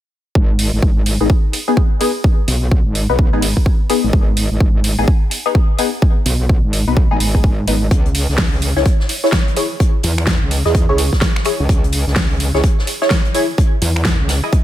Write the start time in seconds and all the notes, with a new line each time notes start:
0.35 G#1, kick
0.59 open hi-hat
0.73 G#1
0.82 G#1, kick
1.06 open hi-hat
1.21 G#1 B3 D#4 G#4
1.30 kick
1.53 open hi-hat
1.68 B3 D#4 G#4
1.77 kick
2.01 B3 D#4 G#4, open hi-hat
2.24 kick
2.48 B1, open hi-hat
2.71 kick
2.86 G#1
2.95 open hi-hat
3.09 B1 B3 D#4 B4
3.19 kick
3.33 G#1 B3 D#4 G#4
3.42 open hi-hat
3.57 kick
3.66 kick
3.90 B3 D#4 G#4, open hi-hat
4.04 G#1
4.13 G#1, kick
4.37 open hi-hat
4.51 G#1
4.60 G#1, kick
4.84 open hi-hat
4.98 G#1 B3 D#4 G#4
5.08 kick
5.31 open hi-hat
5.46 B3 D#4 G#4
5.55 kick
5.79 B3 D#4 G#4, open hi-hat
6.02 kick
6.26 B1, open hi-hat
6.49 kick
6.64 G#1
6.73 open hi-hat
6.87 B1 B3 D#4 B4
6.97 kick
7.11 G#1 B3 D#4 G#4
7.20 G#1, open hi-hat
7.35 B3 D#4 G#4, kick
7.44 kick
7.67 G#1 B3 D#4 B4, open hi-hat
7.91 C#2, kick, closed hi-hat
8.06 closed hi-hat
8.15 closed hi-hat, open hi-hat
8.29 C#2, snare
8.38 C#2, kick, snare, open hi-hat
8.62 closed hi-hat, open hi-hat
8.76 C#2 E4 G#4 C#5, snare
8.85 kick, closed hi-hat
9.00 snare
9.09 closed hi-hat, open hi-hat
9.24 E4 G#4 C#5, snare
9.32 finger snap, kick, snare, closed hi-hat
9.48 closed hi-hat
9.56 E4 G#4 C#5, closed hi-hat, open hi-hat
9.80 kick, closed hi-hat
10.03 E2, closed hi-hat, open hi-hat
10.18 finger snap
10.27 kick, snare, closed hi-hat
10.42 C#2
10.51 closed hi-hat, open hi-hat
10.65 E2 E4 G#4 D#5, snare
10.75 kick, closed hi-hat
10.89 C#2 E4 G#4 C#5
10.98 closed hi-hat, open hi-hat
11.12 kick, snare
11.21 kick, snare, closed hi-hat
11.36 finger snap, snare
11.44 E4 G#4 C#5, finger snap, closed hi-hat, open hi-hat
11.60 C#2
11.69 C#2, kick, closed hi-hat
11.84 closed hi-hat
11.92 closed hi-hat, open hi-hat
12.07 C#2, snare
12.16 C#2, kick, snare, open hi-hat
12.40 closed hi-hat, open hi-hat
12.54 C#2 E4 G#4 C#5, snare
12.64 kick, closed hi-hat
12.78 snare
12.87 closed hi-hat, open hi-hat
13.01 E4 G#4 C#5, snare
13.10 finger snap, kick, snare, closed hi-hat
13.25 closed hi-hat
13.35 E4 G#4 C#5, closed hi-hat, open hi-hat
13.58 kick, closed hi-hat
13.82 E2, closed hi-hat, open hi-hat
13.96 finger snap
14.05 kick, snare, closed hi-hat
14.20 C#2
14.29 snare, closed hi-hat, open hi-hat
14.43 E4 G#4 D#5
14.52 kick, closed hi-hat